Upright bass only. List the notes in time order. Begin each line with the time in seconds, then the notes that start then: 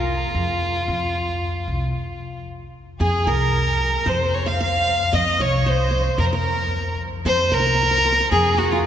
Already playing: C2
0.35 F2
0.88 F2
1.68 C2
3.00 F2
3.26 C2
4.06 F2
5.13 F2
5.39 C2
6.18 F2
7.25 F2
7.51 C2
8.31 F2